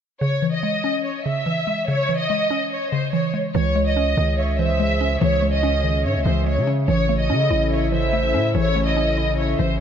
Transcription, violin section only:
0, 0, Header, 1, 2, 480
1, 0, Start_track
1, 0, Key_signature, 4, "minor"
1, 0, Tempo, 416667
1, 248, Time_signature, 4, 2, 24, 8
1, 11292, End_track
2, 0, Start_track
2, 0, Title_t, "Violin section"
2, 0, Program_c, 0, 48
2, 241, Note_on_c, 0, 73, 98
2, 589, Note_off_c, 0, 73, 0
2, 620, Note_on_c, 0, 75, 84
2, 1175, Note_off_c, 0, 75, 0
2, 1210, Note_on_c, 0, 73, 67
2, 1437, Note_off_c, 0, 73, 0
2, 1447, Note_on_c, 0, 76, 80
2, 2124, Note_off_c, 0, 76, 0
2, 2172, Note_on_c, 0, 73, 115
2, 2515, Note_off_c, 0, 73, 0
2, 2535, Note_on_c, 0, 75, 93
2, 3092, Note_off_c, 0, 75, 0
2, 3133, Note_on_c, 0, 73, 86
2, 3358, Note_off_c, 0, 73, 0
2, 3368, Note_on_c, 0, 72, 82
2, 3596, Note_off_c, 0, 72, 0
2, 3599, Note_on_c, 0, 73, 87
2, 3831, Note_off_c, 0, 73, 0
2, 4089, Note_on_c, 0, 73, 107
2, 4434, Note_off_c, 0, 73, 0
2, 4450, Note_on_c, 0, 75, 88
2, 5009, Note_off_c, 0, 75, 0
2, 5047, Note_on_c, 0, 73, 80
2, 5275, Note_off_c, 0, 73, 0
2, 5290, Note_on_c, 0, 76, 93
2, 5966, Note_off_c, 0, 76, 0
2, 6000, Note_on_c, 0, 73, 125
2, 6349, Note_off_c, 0, 73, 0
2, 6366, Note_on_c, 0, 75, 94
2, 6927, Note_off_c, 0, 75, 0
2, 6970, Note_on_c, 0, 73, 93
2, 7197, Note_off_c, 0, 73, 0
2, 7203, Note_on_c, 0, 72, 87
2, 7433, Note_off_c, 0, 72, 0
2, 7446, Note_on_c, 0, 73, 93
2, 7675, Note_off_c, 0, 73, 0
2, 7924, Note_on_c, 0, 73, 109
2, 8271, Note_off_c, 0, 73, 0
2, 8294, Note_on_c, 0, 75, 94
2, 8852, Note_off_c, 0, 75, 0
2, 8888, Note_on_c, 0, 73, 85
2, 9116, Note_off_c, 0, 73, 0
2, 9130, Note_on_c, 0, 76, 86
2, 9806, Note_off_c, 0, 76, 0
2, 9846, Note_on_c, 0, 73, 124
2, 10192, Note_off_c, 0, 73, 0
2, 10213, Note_on_c, 0, 75, 92
2, 10771, Note_off_c, 0, 75, 0
2, 10807, Note_on_c, 0, 73, 89
2, 11035, Note_off_c, 0, 73, 0
2, 11053, Note_on_c, 0, 72, 83
2, 11279, Note_off_c, 0, 72, 0
2, 11292, End_track
0, 0, End_of_file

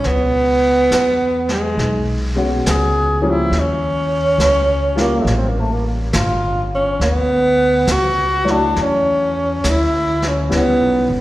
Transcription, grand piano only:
0, 0, Header, 1, 2, 480
1, 0, Start_track
1, 0, Tempo, 872093
1, 20, Time_signature, 4, 2, 24, 8
1, 6169, End_track
2, 0, Start_track
2, 0, Title_t, "Grand piano"
2, 0, Program_c, 0, 0
2, 0, Control_c, 0, 64, 127
2, 26, Control_c, 0, 64, 0
2, 131, Control_c, 0, 64, 127
2, 1299, Note_on_c, 0, 56, 58
2, 1302, Note_on_c, 0, 59, 55
2, 1303, Note_on_c, 0, 61, 57
2, 1308, Note_on_c, 0, 66, 66
2, 1444, Note_off_c, 0, 56, 0
2, 1445, Note_off_c, 0, 59, 0
2, 1446, Note_off_c, 0, 61, 0
2, 1448, Note_off_c, 0, 66, 0
2, 1770, Note_on_c, 0, 55, 59
2, 1772, Note_on_c, 0, 61, 59
2, 1773, Note_on_c, 0, 58, 48
2, 1778, Note_on_c, 0, 53, 64
2, 1919, Note_off_c, 0, 55, 0
2, 1920, Note_off_c, 0, 61, 0
2, 1921, Note_off_c, 0, 58, 0
2, 1923, Note_off_c, 0, 53, 0
2, 1949, Control_c, 0, 64, 0
2, 2047, Control_c, 0, 64, 127
2, 2727, Note_on_c, 0, 55, 62
2, 2731, Note_on_c, 0, 58, 62
2, 2733, Note_on_c, 0, 65, 74
2, 2734, Note_on_c, 0, 61, 59
2, 3339, Note_off_c, 0, 55, 0
2, 3342, Note_off_c, 0, 58, 0
2, 3343, Note_off_c, 0, 61, 0
2, 3343, Note_off_c, 0, 65, 0
2, 3865, Control_c, 0, 64, 0
2, 3971, Control_c, 0, 64, 127
2, 4648, Note_on_c, 0, 54, 64
2, 4650, Note_on_c, 0, 73, 60
2, 4651, Note_on_c, 0, 57, 58
2, 4653, Note_on_c, 0, 64, 71
2, 5261, Note_off_c, 0, 54, 0
2, 5262, Note_off_c, 0, 57, 0
2, 5262, Note_off_c, 0, 73, 0
2, 5263, Note_off_c, 0, 64, 0
2, 5775, Note_on_c, 0, 55, 55
2, 5778, Note_on_c, 0, 59, 56
2, 5783, Control_c, 0, 64, 0
2, 5783, Note_on_c, 0, 61, 49
2, 5783, Note_on_c, 0, 64, 66
2, 5885, Control_c, 0, 64, 127
2, 6065, Note_off_c, 0, 55, 0
2, 6066, Note_off_c, 0, 59, 0
2, 6068, Note_off_c, 0, 61, 0
2, 6068, Note_off_c, 0, 64, 0
2, 6169, End_track
0, 0, End_of_file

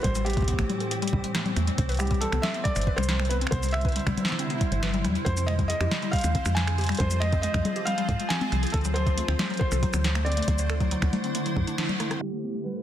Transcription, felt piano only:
0, 0, Header, 1, 2, 480
1, 0, Start_track
1, 0, Tempo, 434783
1, 49, Time_signature, 4, 2, 24, 8
1, 14161, End_track
2, 0, Start_track
2, 0, Title_t, "Felt piano"
2, 0, Program_c, 0, 0
2, 32, Note_on_c, 0, 72, 99
2, 272, Note_on_c, 0, 67, 99
2, 288, Note_off_c, 0, 72, 0
2, 1676, Note_off_c, 0, 67, 0
2, 2194, Note_on_c, 0, 67, 91
2, 2435, Note_on_c, 0, 69, 98
2, 2449, Note_off_c, 0, 67, 0
2, 2672, Note_on_c, 0, 76, 108
2, 2690, Note_off_c, 0, 69, 0
2, 2912, Note_on_c, 0, 74, 107
2, 2928, Note_off_c, 0, 76, 0
2, 3255, Note_off_c, 0, 74, 0
2, 3272, Note_on_c, 0, 72, 101
2, 3615, Note_off_c, 0, 72, 0
2, 3635, Note_on_c, 0, 71, 96
2, 3690, Note_off_c, 0, 71, 0
2, 3873, Note_on_c, 0, 72, 101
2, 4104, Note_off_c, 0, 72, 0
2, 4112, Note_on_c, 0, 76, 111
2, 5516, Note_off_c, 0, 76, 0
2, 5793, Note_on_c, 0, 72, 99
2, 6033, Note_on_c, 0, 75, 100
2, 6048, Note_off_c, 0, 72, 0
2, 6089, Note_off_c, 0, 75, 0
2, 6270, Note_on_c, 0, 75, 101
2, 6750, Note_on_c, 0, 77, 106
2, 6774, Note_off_c, 0, 75, 0
2, 7229, Note_on_c, 0, 80, 109
2, 7254, Note_off_c, 0, 77, 0
2, 7711, Note_on_c, 0, 72, 100
2, 7733, Note_off_c, 0, 80, 0
2, 7943, Note_off_c, 0, 72, 0
2, 7950, Note_on_c, 0, 75, 102
2, 8174, Note_off_c, 0, 75, 0
2, 8191, Note_on_c, 0, 75, 102
2, 8670, Note_on_c, 0, 77, 104
2, 8695, Note_off_c, 0, 75, 0
2, 9148, Note_on_c, 0, 80, 106
2, 9174, Note_off_c, 0, 77, 0
2, 9629, Note_on_c, 0, 69, 94
2, 9653, Note_off_c, 0, 80, 0
2, 9685, Note_off_c, 0, 69, 0
2, 9869, Note_on_c, 0, 72, 100
2, 10575, Note_off_c, 0, 72, 0
2, 10591, Note_on_c, 0, 72, 95
2, 11312, Note_on_c, 0, 74, 90
2, 11342, Note_off_c, 0, 72, 0
2, 12956, Note_off_c, 0, 74, 0
2, 13477, Note_on_c, 0, 67, 77
2, 13929, Note_off_c, 0, 67, 0
2, 13953, Note_on_c, 0, 71, 89
2, 14161, Note_off_c, 0, 71, 0
2, 14161, End_track
0, 0, End_of_file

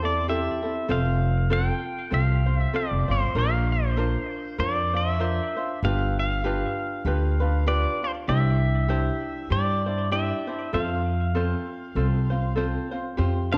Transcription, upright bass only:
0, 0, Header, 1, 2, 480
1, 0, Start_track
1, 0, Key_signature, -1, "major"
1, 0, Tempo, 613497
1, 706, Time_signature, 4, 2, 24, 8
1, 10623, End_track
2, 0, Start_track
2, 0, Title_t, "Upright bass"
2, 0, Program_c, 0, 32
2, 0, Note_on_c, 0, 40, 89
2, 366, Note_off_c, 0, 40, 0
2, 697, Note_on_c, 0, 29, 93
2, 1324, Note_off_c, 0, 29, 0
2, 1659, Note_on_c, 0, 36, 91
2, 2063, Note_off_c, 0, 36, 0
2, 2279, Note_on_c, 0, 29, 77
2, 2406, Note_off_c, 0, 29, 0
2, 2413, Note_on_c, 0, 31, 79
2, 2509, Note_off_c, 0, 31, 0
2, 2516, Note_on_c, 0, 33, 74
2, 2612, Note_off_c, 0, 33, 0
2, 2619, Note_on_c, 0, 34, 94
2, 3246, Note_off_c, 0, 34, 0
2, 3588, Note_on_c, 0, 41, 85
2, 4213, Note_off_c, 0, 41, 0
2, 4556, Note_on_c, 0, 31, 94
2, 5179, Note_off_c, 0, 31, 0
2, 5513, Note_on_c, 0, 38, 85
2, 6137, Note_off_c, 0, 38, 0
2, 6480, Note_on_c, 0, 36, 95
2, 7102, Note_off_c, 0, 36, 0
2, 7437, Note_on_c, 0, 43, 87
2, 8060, Note_off_c, 0, 43, 0
2, 8398, Note_on_c, 0, 41, 92
2, 9019, Note_off_c, 0, 41, 0
2, 9354, Note_on_c, 0, 36, 89
2, 9976, Note_off_c, 0, 36, 0
2, 10315, Note_on_c, 0, 41, 90
2, 10623, Note_off_c, 0, 41, 0
2, 10623, End_track
0, 0, End_of_file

